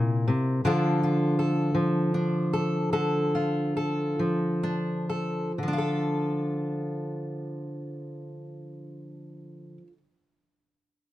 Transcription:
0.00 0.28 A#2 soft
0.00 0.26 C3 medium
0.00 0.61 E4 soft
0.00 0.61 A#4 soft
0.28 0.64 C3 soft
0.65 2.92 D3 medium
0.65 1.74 F3 soft
0.65 2.14 D4 soft
0.65 1.03 F4 medium
0.65 1.39 A4 medium
1.03 3.34 F4 soft
1.39 2.53 A4 soft
1.75 4.16 F3 soft
2.14 4.63 D4 soft
2.53 2.92 A4 soft
2.93 5.51 D3 soft
2.93 3.74 A4 soft
3.35 5.52 F4 soft
3.77 5.08 A4 soft
4.19 5.62 F3 soft
4.63 5.51 D4 soft
5.09 5.51 A4 soft
5.58 9.77 D3 soft
5.63 9.82 F3 soft
5.68 9.87 D4 soft
5.73 9.92 F4 soft
5.78 9.97 A4 soft

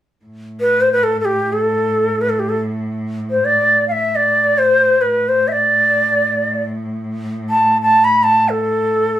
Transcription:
0.25 5.05 A2 medium
0.60 0.83 B4 medium
0.81 0.92 C5 medium
0.92 1.05 B4 medium
1.04 1.20 A4 medium
1.20 1.26 A4 medium
1.25 1.54 G4 medium
1.53 2.23 A4 medium
2.21 2.31 B4 medium
2.29 2.41 A4 soft
2.39 2.51 G4 medium
2.49 2.58 A4 medium
3.31 3.47 C5 medium
3.45 3.88 D5 medium
3.88 4.17 E5 medium
3.88 3.93 F5 medium
4.16 4.60 D5 medium
4.58 5.03 C5 medium
5.01 5.30 B4 medium
5.06 9.20 A2 medium
5.29 5.49 C5 medium
5.48 5.53 E5 medium
5.52 6.63 D5 medium
7.50 7.78 A5 medium
7.82 8.06 A5 medium
8.04 8.25 B5 medium
8.23 8.51 A5 medium
8.49 9.20 A4 medium

